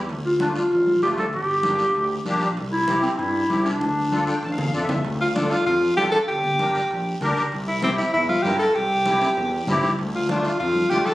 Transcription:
Already playing: E2
0.09 D2, high conga, high timbale, long guiro
0.25 F4, high conga
0.40 A3 D4 F4, high conga, high timbale, short guiro
0.56 F4, high timbale, short guiro
0.71 A1 F4, high timbale, long guiro
0.87 high conga
1.02 D2 A3 D4 F4 G4, high conga, high timbale, short guiro
1.17 A4, high conga, high timbale, short guiro
1.33 G1 G4, high timbale, long guiro
1.48 high conga
1.63 A#3 D4 G4, high conga, high timbale, short guiro
1.79 high timbale, short guiro
1.95 D2, high timbale
2.25 A#1 A#3 D4 G4, high conga, high timbale, short guiro
2.41 high timbale, short guiro
2.57 C2, high conga, high timbale, long guiro
2.72 E4, high conga
2.88 C4 E4 G4, high conga, high timbale, short guiro
3.03 C4, high timbale, short guiro
3.19 G2 E4, high timbale, long guiro
3.49 C2 C4 E4 G4, high conga, high timbale, short guiro
3.65 D4, high timbale, short guiro
3.81 D2, high conga, high timbale, long guiro
4.12 D4 F4 A4, high conga, high timbale, short guiro
4.27 G5, high timbale, short guiro
4.43 A1 A5, high timbale, long guiro
4.51 F5
4.58 low conga, high timbale
4.74 F2 D4 F4 A4 D5, short guiro
4.82 E5
4.89 low conga, low timbale, short guiro
5.05 D2, high conga, high timbale, long guiro
5.20 F4, high conga
5.35 D4 F4 A4, high conga, high timbale, short guiro
5.51 F4, high timbale, short guiro
5.66 F2 F4, high timbale, long guiro
5.97 A1 D4 F4 G4 A4, high conga, high timbale, short guiro
6.12 A4, high timbale, short guiro
6.28 G1 G4, high conga, high timbale
6.44 high conga, low conga
6.59 D4 G4 A#4, high conga, high timbale, short guiro
6.75 high timbale, short guiro
6.90 A#1, high timbale, long guiro
7.21 D2 D4 G4 A#4, high conga, low conga, high timbale, short guiro
7.37 high timbale, short guiro
7.51 C2, high conga, high timbale, long guiro
7.67 E4, high conga
7.82 C4 E4 G4, high conga, high timbale, short guiro
7.98 E4, high timbale, short guiro
8.13 E2 E4, high timbale, long guiro
8.29 F4, high conga
8.43 G2 C4 E4 G4 A#4, high conga, high timbale, low timbale, short guiro
8.59 A4, high timbale, short guiro
8.75 C2 G4, high conga, high timbale, long guiro
8.90 high conga
9.06 C4 E4 G4, high conga, high timbale, short guiro
9.22 high timbale, short guiro
9.37 E2, low timbale, long guiro
9.67 G2 C4 E4 G4, high conga, low conga, low timbale, short guiro
9.83 high conga, low timbale, short guiro
9.99 D2, high conga, high timbale, long guiro
10.14 F4, high conga
10.29 A3 D4 F4, high conga, high timbale, short guiro
10.44 F4, high timbale, short guiro
10.60 F2 F4, high timbale, long guiro
10.75 high conga
10.90 D2 A3 D4 F4 G4, high conga, high timbale, short guiro
11.05 A4, high conga, high timbale, short guiro

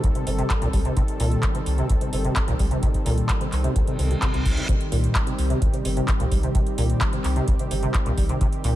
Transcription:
Already playing: D#3 G3 C4 A4
0.04 C2, kick, closed hi-hat
0.15 C3, closed hi-hat
0.27 G1 C3, open hi-hat
0.39 C3, closed hi-hat
0.50 C2, kick, clap, closed hi-hat
0.62 C2 A#2, closed hi-hat
0.73 C2 G3, kick, open hi-hat
0.85 C3, closed hi-hat
0.97 C3, kick, closed hi-hat
1.08 closed hi-hat
1.20 C2 A#2, open hi-hat
1.31 closed hi-hat
1.43 C4, kick, clap, closed hi-hat
1.55 C3, closed hi-hat
1.66 C2, open hi-hat
1.78 C3, closed hi-hat
1.89 C2, kick, closed hi-hat
2.01 C3, closed hi-hat
2.13 G1 C3, open hi-hat
2.25 C3, closed hi-hat
2.36 C2, kick, clap, closed hi-hat
2.48 C2 A#2, closed hi-hat
2.59 C2 G3, kick, open hi-hat
2.71 C3, closed hi-hat
2.83 C3, kick, closed hi-hat
2.94 kick, closed hi-hat
3.06 C2 A#2, open hi-hat
3.18 closed hi-hat
3.29 C4, kick, clap, closed hi-hat
3.41 C3, closed hi-hat
3.52 C2, clap, open hi-hat
3.64 C3, closed hi-hat
3.76 C2, kick, closed hi-hat, reverse cymbal
3.87 C3, closed hi-hat
3.99 C2 C3, open hi-hat
4.11 C3, closed hi-hat
4.22 C3, kick, clap, closed hi-hat
4.34 C2 C3, closed hi-hat
4.45 C2 G3, kick, open hi-hat
4.57 C2, closed hi-hat
4.69 C3 G4, kick, closed hi-hat
4.81 closed hi-hat
4.92 C2 A#2, open hi-hat
5.04 closed hi-hat
5.15 C4, kick, clap, closed hi-hat
5.27 C3, closed hi-hat
5.39 C2, open hi-hat
5.50 C3, closed hi-hat
5.62 C2, kick, closed hi-hat
5.73 C3, closed hi-hat
5.85 G1 C3, open hi-hat
5.97 C3, closed hi-hat
6.08 C2, kick, clap, closed hi-hat
6.20 C2 A#2, closed hi-hat
6.32 C2 G3, kick, open hi-hat
6.43 C3, closed hi-hat
6.55 C3, kick, closed hi-hat
6.66 closed hi-hat
6.78 C2 A#2, open hi-hat
6.90 closed hi-hat
7.01 C4, kick, clap, closed hi-hat
7.13 C3, closed hi-hat
7.24 C2, clap, open hi-hat
7.36 C3, closed hi-hat
7.48 C2, kick, closed hi-hat
7.59 C3, closed hi-hat
7.71 G1 C3, open hi-hat
7.83 C3, closed hi-hat
7.94 C2, kick, clap, closed hi-hat
8.06 C2 A#2, closed hi-hat
8.18 C2 G3, kick, open hi-hat
8.29 C3, closed hi-hat
8.41 C3, kick, closed hi-hat
8.53 closed hi-hat
8.64 C2 A#2, open hi-hat

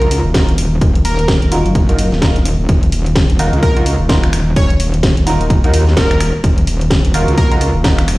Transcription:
Already playing: C#2
0.02 D#4 F4 F#4 A#4, closed hi-hat
0.11 open hi-hat
0.25 D#1
0.34 D#4 F4 F#4 A#4, kick, snare, closed hi-hat
0.49 closed hi-hat
0.58 D#1, open hi-hat
0.81 D#1, kick, closed hi-hat
0.95 closed hi-hat
1.05 D#1 A#4, open hi-hat
1.19 closed hi-hat
1.28 kick, snare, closed hi-hat
1.42 D#1, closed hi-hat
1.52 D#4 F4 F#4 A#4, open hi-hat
1.66 F#1, closed hi-hat
1.75 kick, closed hi-hat
1.89 D#4 F4 F#4 A#4, closed hi-hat
1.99 open hi-hat
2.12 D#1, snare
2.22 D#4 F4 F#4 A#4, kick, snare, closed hi-hat
2.36 D#1, closed hi-hat
2.45 open hi-hat
2.59 D#1
2.69 D#1, kick, closed hi-hat
2.83 closed hi-hat
2.92 D#1, open hi-hat
3.06 closed hi-hat
3.15 kick, snare, closed hi-hat
3.30 D#1, closed hi-hat
3.39 D#4 F4 F#4 A#4, open hi-hat
3.53 C#2, closed hi-hat
3.63 A#4, kick, closed hi-hat
3.77 D#4 F4 F#4 A#4, closed hi-hat
3.86 open hi-hat
4.00 D#1
4.09 D#4 F4 F#4 A#4, kick, snare, closed hi-hat
4.23 finger snap, closed hi-hat
4.33 D#1, finger snap, open hi-hat
4.56 D#1 C#5, kick, closed hi-hat
4.70 closed hi-hat
4.80 D#1, open hi-hat
4.94 closed hi-hat
5.03 kick, snare, closed hi-hat
5.17 D#1, closed hi-hat
5.27 D#4 F4 F#4 A#4, open hi-hat
5.41 D#1, closed hi-hat
5.50 kick, closed hi-hat
5.64 D#2 D#4 F4 F#4 A#4, closed hi-hat
5.74 open hi-hat
5.87 snare
5.97 D#1 D#4 F4 F#4 A#4, kick, snare, closed hi-hat
6.11 finger snap, closed hi-hat
6.20 finger snap, open hi-hat
6.44 D#1, kick, closed hi-hat
6.58 closed hi-hat
6.67 D#1, open hi-hat
6.81 closed hi-hat
6.90 kick, snare, closed hi-hat
7.05 D#1, closed hi-hat
7.14 D#4 F4 F#4 A#4, open hi-hat
7.28 C#2, closed hi-hat
7.38 A#4, kick, closed hi-hat
7.52 D#4 F4 F#4 A#4, closed hi-hat
7.61 open hi-hat
7.75 D#1
7.84 D#4 F4 F#4 A#4, kick, snare, closed hi-hat
7.98 finger snap, closed hi-hat
8.08 D#1, finger snap, open hi-hat

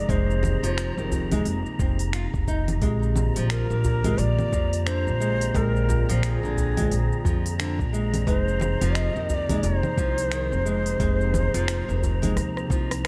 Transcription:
Already playing: C3 F3 A#3 C4 D#4 G4 G#4 D5 A#5
0.08 F1 C3 F3 G#3 A#3 D#4 C5, kick, open hi-hat, djembe slap, cabasa
0.30 djembe tone, cabasa
0.43 djembe slap, djembe bass, low conga, cabasa
0.63 F1 F3, open hi-hat, cabasa
0.78 finger snap, open hi-hat, cabasa
0.97 F1 D#3, cabasa
1.12 djembe bass, cabasa
1.31 C3 F3 G#3 A#3 D#4, open hi-hat, low conga, djembe bass, cabasa
1.45 F1, open hi-hat, cabasa
1.66 djembe tone, cabasa
1.78 F1 C3 F3 A#3 C4 D#4, kick, djembe tone, cabasa
1.99 open hi-hat, cabasa
2.13 F4, finger snap, open hi-hat, cabasa
2.34 F1, kick, cabasa
2.48 D#4, kick, cabasa
2.68 open hi-hat, low conga, cabasa
2.80 A#1 D3 G#3 A#3 C4 F4 G4 C5 D5, kick, open hi-hat, djembe slap, cabasa
2.84 F4
3.03 cabasa
3.16 djembe slap, low conga, cabasa
3.36 A#1 F3, open hi-hat, cabasa
3.50 A#4, finger snap, open hi-hat, cabasa
3.70 A#1 D3, cabasa
3.84 djembe bass, cabasa
4.03 D3 G#3 C4 F4 G4, open hi-hat, djembe bass, low conga, cabasa
4.17 A#1 D5, open hi-hat, djembe tone, cabasa
4.39 low conga, cabasa
4.52 F2 F3, kick, djembe tone, cabasa
4.73 open hi-hat, cabasa
4.86 D3 C5, finger snap, open hi-hat, cabasa
5.06 A#1, djembe tone, cabasa
5.20 G#3, cabasa
5.41 open hi-hat, cabasa
5.53 A#1 D3 G#3 C4 A#4 G5, kick, open hi-hat, djembe slap, cabasa
5.57 F4
5.75 djembe tone, cabasa
5.89 djembe slap, djembe bass, cabasa
6.09 A#1 F3, open hi-hat, cabasa
6.23 G#4, finger snap, open hi-hat, cabasa
6.43 A#1 D3, cabasa
6.57 djembe bass, cabasa
6.76 D3 G#3 C4 G5, open hi-hat, low conga, djembe bass, cabasa
6.80 F4
6.91 A#1, open hi-hat, cabasa
7.11 djembe tone, cabasa
7.25 F2 F3, kick, djembe tone, cabasa
7.46 open hi-hat, cabasa
7.59 D3, finger snap, open hi-hat, cabasa
7.79 A#1, kick, cabasa
7.93 G#3, cabasa
8.14 open hi-hat, low conga, cabasa
8.26 F1 C3 F3 G#3 A#3 C4 D#4 G4 G#4 C5, kick, open hi-hat, djembe slap, cabasa
8.48 cabasa
8.60 djembe slap, low conga, cabasa
8.81 F1 F3, open hi-hat, cabasa
8.95 D#5, finger snap, open hi-hat, cabasa
9.16 F1 D#3, cabasa
9.29 D#5, djembe bass, cabasa
9.34 D5
9.47 C3 F3 G#3 A#3, open hi-hat, djembe bass, low conga, cabasa
9.51 D#4
9.63 F1 C5, open hi-hat, djembe tone, cabasa
9.83 low conga, cabasa
9.97 C2 F3, kick, djembe tone, cabasa
10.18 open hi-hat, cabasa
10.32 D#3, finger snap, open hi-hat, cabasa
10.52 F1, djembe tone, cabasa
10.65 G#3, cabasa
10.86 open hi-hat, cabasa
10.98 F1 C3 F3 G#3 A#3, kick, open hi-hat, djembe slap, cabasa
11.02 D#4
11.20 djembe tone, cabasa
11.34 djembe slap, low conga, djembe bass, cabasa
11.54 F1 F3, open hi-hat, cabasa
11.68 finger snap, open hi-hat, cabasa
11.88 F1 D#3, cabasa
12.03 djembe bass, cabasa
12.22 C3 F3 G#3 A#3 D#4, open hi-hat, low conga, djembe bass, cabasa
12.36 D#2, cross-stick, open hi-hat, cabasa
12.57 cross-stick, djembe tone, cabasa
12.68 C2 C3 F3 A#3, kick, djembe tone, cabasa
12.72 D#4
12.91 cross-stick, open hi-hat, djembe tone, cabasa

